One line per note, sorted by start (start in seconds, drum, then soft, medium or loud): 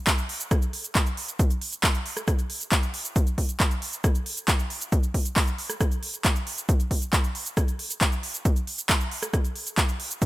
0.07 kick loud
0.07 clap loud
0.07 closed hi-hat loud
0.07 shaker medium
0.18 closed hi-hat soft
0.18 shaker soft
0.29 open hi-hat loud
0.40 closed hi-hat soft
0.40 shaker medium
0.51 kick loud
0.51 cross-stick medium
0.51 closed hi-hat loud
0.51 shaker medium
0.62 closed hi-hat soft
0.62 shaker soft
0.73 open hi-hat loud
0.84 closed hi-hat soft
0.84 shaker medium
0.95 kick loud
0.95 clap loud
0.95 closed hi-hat medium
0.95 shaker medium
1.06 closed hi-hat soft
1.06 shaker soft
1.17 open hi-hat loud
1.28 closed hi-hat soft
1.28 shaker medium
1.39 kick loud
1.39 closed hi-hat loud
1.39 shaker medium
1.51 closed hi-hat soft
1.51 shaker soft
1.61 open hi-hat loud
1.73 closed hi-hat soft
1.73 shaker medium
1.84 kick loud
1.84 clap loud
1.84 closed hi-hat loud
1.84 shaker medium
1.95 closed hi-hat soft
1.95 shaker soft
2.06 open hi-hat loud
2.17 cross-stick medium
2.17 closed hi-hat soft
2.17 shaker medium
2.28 kick loud
2.28 cross-stick medium
2.28 closed hi-hat medium
2.28 shaker medium
2.39 closed hi-hat soft
2.39 shaker soft
2.50 open hi-hat loud
2.61 closed hi-hat soft
2.61 shaker medium
2.72 kick loud
2.72 clap loud
2.72 closed hi-hat medium
2.72 shaker medium
2.83 closed hi-hat soft
2.83 shaker soft
2.94 open hi-hat loud
3.05 closed hi-hat soft
3.05 shaker medium
3.16 kick loud
3.16 closed hi-hat medium
3.16 shaker medium
3.27 closed hi-hat soft
3.27 shaker soft
3.38 kick medium
3.38 open hi-hat loud
3.49 closed hi-hat soft
3.49 shaker medium
3.60 kick loud
3.60 clap loud
3.60 closed hi-hat loud
3.60 shaker medium
3.71 closed hi-hat soft
3.71 shaker soft
3.82 open hi-hat loud
3.93 closed hi-hat soft
3.93 shaker medium
4.04 kick loud
4.04 cross-stick medium
4.04 closed hi-hat medium
4.04 shaker medium
4.15 closed hi-hat soft
4.15 shaker soft
4.26 open hi-hat loud
4.37 closed hi-hat soft
4.37 shaker medium
4.48 kick loud
4.48 clap loud
4.48 closed hi-hat medium
4.48 shaker medium
4.59 closed hi-hat soft
4.59 shaker soft
4.70 open hi-hat loud
4.81 closed hi-hat soft
4.81 shaker medium
4.92 kick loud
4.92 closed hi-hat medium
4.92 shaker medium
5.03 closed hi-hat soft
5.03 shaker soft
5.14 kick medium
5.14 open hi-hat loud
5.25 closed hi-hat soft
5.25 shaker medium
5.36 kick loud
5.36 clap loud
5.36 open hi-hat medium
5.36 shaker medium
5.47 closed hi-hat soft
5.47 shaker soft
5.58 open hi-hat loud
5.70 cross-stick medium
5.70 closed hi-hat soft
5.70 shaker medium
5.81 kick loud
5.81 cross-stick medium
5.81 closed hi-hat medium
5.81 shaker medium
5.92 closed hi-hat soft
5.92 shaker soft
6.03 open hi-hat loud
6.14 closed hi-hat soft
6.14 shaker medium
6.25 kick loud
6.25 clap loud
6.25 closed hi-hat medium
6.25 shaker medium
6.36 closed hi-hat soft
6.36 shaker soft
6.47 open hi-hat loud
6.58 closed hi-hat soft
6.58 shaker medium
6.69 kick loud
6.69 closed hi-hat medium
6.69 shaker medium
6.80 closed hi-hat soft
6.80 shaker soft
6.91 kick medium
6.91 open hi-hat loud
7.02 closed hi-hat soft
7.02 shaker medium
7.13 kick loud
7.13 clap loud
7.13 closed hi-hat loud
7.13 shaker medium
7.24 closed hi-hat soft
7.24 shaker soft
7.35 open hi-hat loud
7.46 closed hi-hat soft
7.46 shaker medium
7.57 kick loud
7.57 cross-stick medium
7.57 closed hi-hat medium
7.57 shaker medium
7.68 closed hi-hat soft
7.68 shaker soft
7.79 open hi-hat loud
7.90 closed hi-hat soft
7.90 shaker medium
8.01 kick loud
8.01 clap loud
8.01 closed hi-hat medium
8.01 shaker medium
8.12 closed hi-hat soft
8.12 shaker soft
8.23 open hi-hat loud
8.34 closed hi-hat soft
8.34 shaker medium
8.45 kick loud
8.45 closed hi-hat loud
8.45 shaker medium
8.56 closed hi-hat soft
8.56 shaker soft
8.67 open hi-hat loud
8.78 closed hi-hat soft
8.78 shaker medium
8.89 kick loud
8.89 clap loud
8.89 closed hi-hat loud
8.89 shaker medium
9.00 closed hi-hat soft
9.00 shaker soft
9.11 open hi-hat loud
9.23 cross-stick medium
9.23 closed hi-hat soft
9.23 shaker medium
9.34 kick loud
9.34 cross-stick medium
9.34 closed hi-hat medium
9.34 shaker medium
9.45 closed hi-hat soft
9.45 shaker soft
9.56 open hi-hat loud
9.67 closed hi-hat soft
9.67 shaker medium
9.78 kick loud
9.78 clap loud
9.78 closed hi-hat loud
9.78 shaker medium
9.89 closed hi-hat soft
9.89 shaker soft
10.00 open hi-hat loud
10.11 closed hi-hat soft
10.11 shaker medium
10.22 kick loud
10.22 closed hi-hat loud
10.22 shaker medium